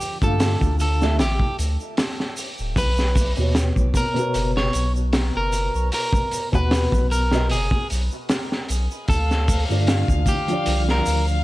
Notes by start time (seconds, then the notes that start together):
Already playing: D3 F3 F4 G4 D5
0.01 open hi-hat, shaker
0.21 G2 D3 A3 F4 A4 F5, kick, shaker
0.40 snare, open hi-hat, shaker
0.61 D2, kick, shaker
0.80 A4, open hi-hat, shaker
1.00 D3 A3 F4 E5, snare, shaker
1.19 A1 G4, snare, open hi-hat, shaker
1.40 kick
1.59 D2, open hi-hat, shaker
1.80 shaker
1.97 snare, open hi-hat, shaker
2.20 snare
2.37 open hi-hat, shaker
2.58 D1, shaker
2.76 B1 B4, kick, open hi-hat, shaker
2.97 snare, shaker
3.15 kick, open hi-hat, shaker
3.37 D#2 B2 B3 F#4 C#5, shaker
3.55 snare, open hi-hat, shaker
3.76 B1, kick, shaker
3.94 A#4, kick, open hi-hat, shaker
4.14 B2 B3, closed hi-hat, shaker
4.19 F#4 C#5
4.34 F#1, open hi-hat, shaker
4.57 C#5, snare
4.73 B1, open hi-hat, shaker
4.96 shaker
5.13 snare, open hi-hat, shaker
5.36 F#1 A#4
5.52 open hi-hat, shaker
5.75 B1, shaker
5.92 A#4, open hi-hat, shaker
6.13 kick, shaker
6.31 open hi-hat, shaker
6.52 D#2 B2 B3 F#4 B4 F#5, kick, shaker
6.71 snare, open hi-hat, shaker
6.92 B1, kick, shaker
7.11 A#4, open hi-hat, shaker
7.31 B2 B3 F#4 D#5, snare, shaker
7.49 F#1 G#4, open hi-hat, shaker
7.71 kick
7.90 B1, open hi-hat, shaker
8.11 shaker
8.29 snare, open hi-hat, shaker
8.52 snare
8.69 B1, open hi-hat, shaker
8.91 shaker
9.08 D2 A4 F5, kick, open hi-hat, shaker
9.31 snare, shaker
9.48 kick, open hi-hat, shaker
9.69 G2 D3 A3 F4 D5, shaker
9.87 snare, open hi-hat, shaker
10.08 D2, kick, shaker
10.26 G4, kick, open hi-hat, shaker
10.46 D3 F3, closed hi-hat, shaker
10.51 F4 D5
10.66 C2, open hi-hat, shaker
10.89 A#4, snare
11.06 D2, open hi-hat, shaker
11.27 shaker